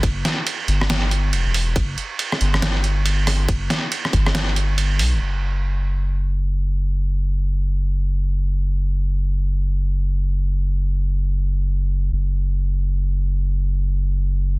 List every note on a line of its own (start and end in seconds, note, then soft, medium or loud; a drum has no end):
0.03 0.23 F#1 loud
0.03 kick loud
0.03 closed hi-hat medium
0.03 ride medium
0.25 snare medium
0.25 closed hi-hat medium
0.47 closed hi-hat medium
0.47 ride soft
0.68 1.34 G1 medium
0.68 closed hi-hat medium
0.81 cross-stick medium
0.90 snare loud
0.90 closed hi-hat medium
0.90 ride medium
1.11 closed hi-hat medium
1.33 1.45 E1 medium
1.33 closed hi-hat medium
1.33 ride soft
1.46 1.75 E1 medium
1.54 open hi-hat medium
1.76 1.96 F#1 loud
1.76 kick loud
1.76 closed hi-hat medium
1.76 ride medium
1.98 closed hi-hat medium
2.19 closed hi-hat medium
2.19 ride medium
2.32 cross-stick medium
2.41 3.47 G1 medium
2.41 closed hi-hat medium
2.54 cross-stick medium
2.62 snare loud
2.62 closed hi-hat medium
2.62 ride medium
2.84 closed hi-hat medium
3.06 closed hi-hat medium
3.06 ride soft
3.27 cross-stick medium
3.27 open hi-hat medium
3.49 3.69 F#1 loud
3.49 kick loud
3.49 closed hi-hat medium
3.49 ride medium
3.70 snare medium
3.70 closed hi-hat medium
3.92 closed hi-hat medium
3.92 ride soft
4.05 cross-stick medium
4.13 5.01 G1 medium
4.13 kick medium
4.13 closed hi-hat medium
4.26 cross-stick medium
4.35 snare loud
4.35 closed hi-hat medium
4.35 ride medium
4.56 closed hi-hat medium
4.78 closed hi-hat medium
4.78 ride soft
4.99 5.14 B1 loud
4.99 open hi-hat loud
5.13 5.20 G1 medium
5.21 12.10 F#1 medium
12.12 14.59 F#1 medium